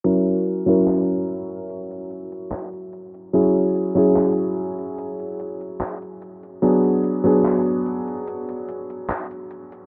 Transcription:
<<
  \new Staff \with { instrumentName = "Electric grand piano" } { \time 4/4 \key fis \mixolydian \tempo 4 = 73 <fis cis' e' ais'>8. <fis cis' e' ais'>2.~ <fis cis' e' ais'>16 | <fis cis' e' gis'>8. <fis cis' e' gis'>2.~ <fis cis' e' gis'>16 | <fis b d' gis'>8. <fis b d' gis'>2.~ <fis b d' gis'>16 | }
  \new DrumStaff \with { instrumentName = "Drums" } \drummode { \time 4/4 hh16 hh16 hh16 hh16 <hc hh>16 hh16 hh16 hh16 hh16 hh16 hh16 hh16 <hc hh>16 hh16 hh16 hh16 | hh16 hh16 hh16 hh16 <hc hh>16 hh16 hh16 hh16 hh16 hh16 hh16 hh16 <hc hh>16 hh16 hh16 hh16 | hh16 hh16 hh16 hh16 <hc hh>16 hh16 hh16 hh16 hh16 hh16 hh16 hh16 <hc hh>16 hh16 hh16 hh16 | }
>>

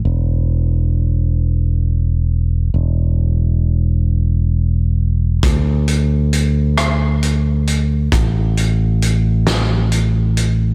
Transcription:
<<
  \new Staff \with { instrumentName = "Fingered electric bass" } { \clef bass \time 6/8 \key d \mixolydian \tempo 4. = 45 e,,2. | e,,2. | d,2. | a,,2. | }
  \new DrumStaff \with { instrumentName = "Drums" } \drummode { \time 6/8 r4. r4. | r4. r4. | <hh bd>8 hh8 hh8 <hh ss>8 hh8 hh8 | <hh bd>8 hh8 hh8 <hh sn>8 hh8 hh8 | }
>>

